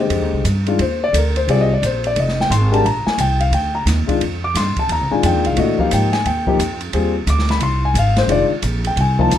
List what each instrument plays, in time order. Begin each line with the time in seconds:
0.00 grand piano D3 G#3 G4 C5 D#5
0.10 upright bass F2, ride
0.22 upright bass D#2
0.33 upright bass C2
0.44 upright bass G2, hi-hat pedal, ride
0.66 grand piano D#3 G#3 D4 F4, ride
0.79 upright bass D#2, grand piano C5, ride
1.04 grand piano D5
1.13 upright bass D2, grand piano A4, hi-hat pedal, ride
1.18 grand piano A#4
1.36 grand piano C5, ride
1.47 upright bass C2, grand piano G3 C4 F4 G#4 D5, ride
1.61 grand piano D#5
1.74 grand piano D5
1.82 upright bass A#1, grand piano C5, hi-hat pedal, ride
2.04 grand piano D5, ride
2.16 upright bass F1, grand piano D#5, ride
2.28 snare
2.40 grand piano G5, snare
2.50 upright bass G#1, grand piano C6, hi-hat pedal, ride
2.72 grand piano G#3 D4 G4 A#4 A5, ride
2.84 upright bass A#1, grand piano A#5, ride
3.06 grand piano G#5, muted upright bass stroke, snare
3.18 upright bass C2, grand piano G5, hi-hat pedal, ride
3.40 grand piano F5, ride
3.51 upright bass D2, grand piano G5, ride
3.75 grand piano A#5
3.86 upright bass D#2, snare, hi-hat pedal, ride
4.07 grand piano D#3 G#3 D4 F4, muted upright bass stroke, kick, ride
4.21 upright bass F2, ride
4.44 grand piano D6
4.54 upright bass G2, grand piano C6, snare, hi-hat pedal, ride
4.76 grand piano A5, muted upright bass stroke, kick, ride
4.89 upright bass D#2, grand piano A#5, ride
5.01 upright bass C2
5.11 upright bass A#1, grand piano D#3 G#3 D4 F4 G#5
5.23 upright bass F2, grand piano G5, hi-hat pedal, ride
5.35 upright bass D#2
5.45 upright bass C2, grand piano F5, ride
5.57 upright bass A#2, grand piano E3 A3 D4 F#4 D#5, ride
5.79 grand piano F3 A#3 D#4 G4 F5, muted upright bass stroke, kick
5.91 upright bass G#2, grand piano G5, hi-hat pedal, ride
6.13 grand piano G#5, snare, ride
6.25 upright bass D#2, grand piano G5, ride
6.47 grand piano F3 A#3 D#4 G4, kick
6.59 upright bass F2, hi-hat pedal, ride
6.81 ride
6.93 upright bass D#2, grand piano G3 C4 F4 G#4, ride
7.26 upright bass D2, grand piano D6, hi-hat pedal, ride
7.39 snare
7.49 grand piano B5, snare, ride
7.59 upright bass C2, grand piano C6, ride
7.85 grand piano G#5
7.94 upright bass G#1, hi-hat pedal, ride
7.99 grand piano F5
8.16 grand piano C5, snare, ride
8.27 upright bass F1, grand piano D#3 G#3 D4 F4, ride
8.32 grand piano D5
8.50 muted upright bass stroke
8.62 upright bass A#1, hi-hat pedal, ride
8.84 grand piano G5, ride
8.96 upright bass C2, ride
9.01 grand piano G#5
9.19 grand piano F3 A#3 D#4 F4 A5, kick
9.30 upright bass D2, hi-hat pedal, ride